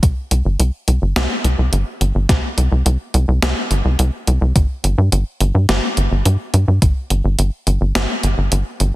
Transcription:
0.03 C2, kick, closed hi-hat
0.31 C2, closed hi-hat
0.45 G1
0.59 C2, closed hi-hat
0.88 C2, closed hi-hat
1.02 G1
1.16 C2, snare, closed hi-hat
1.44 C2, closed hi-hat
1.58 C2
1.72 G1, closed hi-hat
2.01 G1, closed hi-hat
2.15 G1
2.29 C2, kick, snare, closed hi-hat
2.58 C2, closed hi-hat
2.72 C2
2.86 C2, closed hi-hat
3.14 C2, closed hi-hat
3.28 C2
3.42 C2, snare, closed hi-hat
3.71 G1, closed hi-hat
3.85 C2
3.99 C2, closed hi-hat
4.27 C2, closed hi-hat
4.41 C2
4.56 G1, kick, closed hi-hat
4.84 G1, closed hi-hat
4.98 G2
5.12 G1, closed hi-hat
5.40 G1, closed hi-hat
5.55 G2
5.69 G1, snare, closed hi-hat
5.97 G1, closed hi-hat
6.11 G1
6.25 G2, closed hi-hat
6.54 G2, closed hi-hat
6.68 G2
6.82 G1, kick, closed hi-hat
7.10 G1, closed hi-hat
7.24 G1
7.39 G1, closed hi-hat
7.67 G1, closed hi-hat
7.81 G1
7.95 G1, snare, closed hi-hat
8.23 G1, closed hi-hat
8.38 G1
8.52 G1, closed hi-hat
8.80 G1, closed hi-hat

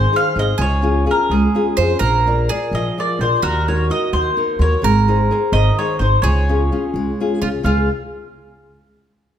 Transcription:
Already playing: D#3 G#4 C5
0.12 D#4 G#4 C5 F5
0.35 G#1 D#4 G#4 C5 D#5
0.58 C#2 C#3 G#4 C#5
0.82 C#4 F4 G#4
1.06 C#4 F4 G#4
1.11 A#4
1.30 C#2 G#3 G#4
1.55 C#4 F4 G#4
1.77 F2 C#4 F4 G#4 C5
1.99 A#1 A#3 A#4
2.27 F4 A#4 D5
2.49 F4 G#4 A#4 D5
2.71 A#1 F3 D#5
2.98 F4 A#4 D5
3.19 A#1 F4 A#4 C5 D5
3.42 D#2 D#3 F#4 A#4
3.68 D#4 F#4 A#4 C#5
3.90 D#4 F#4 A#4 D#5
4.13 D#2 A#3 C5
4.37 D#4 F#4 A#4
4.59 D#2 D#4 F#4 A#4 C#5
4.82 G#1 G#3 A#4
5.08 D#4 G#4 C5
5.31 D#4 G#4 C5
5.52 G#1 D#3 D#5
5.78 D#4 G#4 C5 C#5
5.99 G#1 D#4 G#4 C5
6.22 C#2 C#3 G#4 C#5
6.49 C#4 F4 G#4
6.72 C#4 F4 G#4
6.94 C#2 G#3
7.20 C#4 F4 G#4
7.41 C#2 C#4 F4 G#4
7.63 C#2 C#3 G#3 C#4 F4 G#4 F5

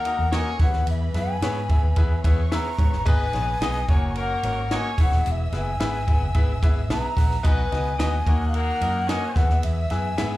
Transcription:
Already playing: D#3 A#3 A#4 F#5 A#5
0.05 A#3 D#4 F#4 A#4 D#5, ride
0.19 E2
0.31 A#3 C#4 D#4 F#4 A#4 C#5 D#5 G#5, snare, ride
0.59 E2 E3 B3 E4 G4 B4 E5 F#5 B5, kick, snare, ride
0.67 G#4
0.73 D#2, snare
0.87 E2 E5, ride
1.14 F#2 B3 E4 G#4 B4 E5 G#5, snare, ride
1.41 G#2 B3 E4 G#4 B4 C#5, snare, ride
1.70 B3 E4 G#4 B4 E5, kick, ride
1.83 D#2
1.96 E2 B3 E4 G#4 B4 E5, kick, ride
2.24 E2 B3 E4 G#4 B4 C#5 E5 C#6, kick, ride
2.51 B3 E4 G#4 B4 E5 A#5, snare, ride
2.79 G#2 B3 E4 G#4 B4 C#5, kick, ride
2.93 G1, snare
3.05 G#1 G#2 B3 D#4 G#4 B4 D#5 G#5 D#6, kick, ride
3.33 A#1 B3 D#4 G#4 B4 C#5, snare, ride
3.60 B1 B3 D#4 G#4 B4 D#5, snare, ride
3.88 F#1 A#3 C#4 F#4 A#4 C#5 C#6, kick, ride
4.15 A#3 A#4, ride
4.20 F#5
4.43 G#1 A#3 C#4 F#4 A#4 C#5, ride
4.70 A#3 C#4 F#4 A#4 C#5 D#5, snare, ride
4.75 G#5
4.98 E1 E3 B3 E4 G#4 B4 E5 E6, kick, snare, open hi-hat, ride
5.03 F#5
5.12 D#1, snare
5.25 E1, hi-hat pedal, ride
5.31 E5
5.52 F#1 B3 E4 G#4 B4 E5, snare, ride
5.58 G#5
5.80 G#1 B3 E4 G#4 B4 E5, snare, ride
6.08 B3 E4 G#4 B4 F#5, kick, ride
6.21 F#1
6.34 G#1 B3 E4 G#4 B4 E5, kick, ride
6.63 G#1 B3 E4 G#4 B4 E5, kick, ride
6.89 B1 B3 E4 G#4 B4 E5 A#5, snare, ride
7.17 A#1 B3 E4 G#4 B4 F#5, kick, snare, open hi-hat, ride
7.31 snare
7.43 B1 B2 B3 D#4 F#4 B4 D#5 G#5 D#6, kick, hi-hat pedal, ride
7.72 C#2 B3 D#4 F#4 B4 D#5, snare, ride
7.98 D#2 B3 D#4 F#4 B4 D#5, snare, ride
8.26 D#2 D#3 A#3 C#4 D#4 F#4 A#4 C#5 D#5 F#5 F#6, kick, ride
8.49 F5
8.54 A#3 A#4 F#5, ride
8.81 F#2 A#3 D#4 F#4 A#4 D#5, ride
9.07 A#3 C#4 D#4 F#4 A#4 C#5 D#5 G#5, snare, ride
9.36 E2 E3 B3 E4 G#4 B4 E5 F#5 E6, kick, snare, ride
9.49 D#2, snare
9.63 E2 E5, ride
9.90 F#2 B3 E4 G#4 B4 E5 G#5, snare, ride
10.18 G#2 B3 E4 G#4 B4 E5, snare, ride

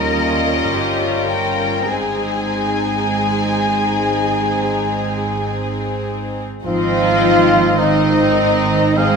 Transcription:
Already playing: D#2 G3 C#4 F4 A#4 D#5
0.71 G1 G4
1.29 A#4 G5
1.88 G#1 G#3 C4 D#4 G#4 G#5
6.64 G#1 F3 C4 D#4 F4 D#5 F5
7.78 D#3 C4 D#4 D#5
8.97 G#3 C4 D#4 G#4 D#5 F5 G#5

